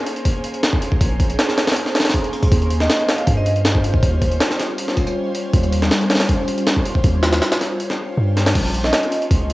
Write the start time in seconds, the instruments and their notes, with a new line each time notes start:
0.06 open hi-hat
0.16 closed hi-hat
0.25 kick, open hi-hat
0.44 open hi-hat
0.54 closed hi-hat
0.63 snare, open hi-hat
0.73 kick
0.82 open hi-hat
0.92 kick
1.01 808-style bass A#1, kick, open hi-hat
1.20 kick, open hi-hat
1.30 closed hi-hat
1.39 snare, open hi-hat
1.49 snare
1.58 snare, open hi-hat
1.67 snare, open hi-hat
1.72 snare, open hi-hat
1.76 open hi-hat
1.86 snare
1.95 snare, open hi-hat
2.00 snare, open hi-hat
2.05 snare, open hi-hat
2.09 snare, open hi-hat
2.14 kick, open hi-hat
2.24 closed hi-hat
2.33 open hi-hat
2.43 kick, open hi-hat
2.52 808-style bass D#2, kick, open hi-hat
2.62 closed hi-hat
2.70 open hi-hat
2.80 vibraphone D#5, snare
2.90 snare, open hi-hat
2.99 closed hi-hat
3.08 vibraphone F5, snare, open hi-hat
3.18 closed hi-hat
3.27 808-style bass G2, kick, open hi-hat
3.37 vibraphone D#5
3.46 vibraphone D#5, open hi-hat
3.56 closed hi-hat
3.65 snare, open hi-hat
3.75 kick
3.84 open hi-hat
3.94 kick
4.02 808-style bass D#2, kick, open hi-hat
4.21 kick, open hi-hat
4.31 closed hi-hat
4.40 snare, open hi-hat
4.50 snare
4.59 snare, open hi-hat
4.78 open hi-hat
4.88 snare
4.97 kick, open hi-hat
5.07 closed hi-hat
5.35 open hi-hat
5.53 808-style bass D#2, kick, open hi-hat
5.63 closed hi-hat
5.72 open hi-hat
5.82 snare
5.91 snare, open hi-hat
6.01 closed hi-hat
6.10 snare, open hi-hat
6.15 snare, open hi-hat
6.20 snare, open hi-hat
6.29 kick, open hi-hat
6.48 open hi-hat
6.58 closed hi-hat
6.67 snare, open hi-hat
6.76 kick
6.86 open hi-hat
6.95 kick
7.04 808-style bass D#2, kick, open hi-hat
7.23 snare, open hi-hat
7.33 snare, open hi-hat
7.42 snare, open hi-hat
7.52 snare, open hi-hat
7.61 snare, open hi-hat
7.80 open hi-hat
7.90 snare
8.17 808-style bass G2
8.37 snare, open hi-hat
8.46 snare, open hi-hat
8.55 808-style bass A#1, kick, open hi-hat, crash
8.65 closed hi-hat
8.74 open hi-hat
8.84 vibraphone D#5, snare
8.93 snare, open hi-hat
9.03 closed hi-hat
9.12 open hi-hat
9.22 closed hi-hat
9.31 808-style bass C#2, kick, open hi-hat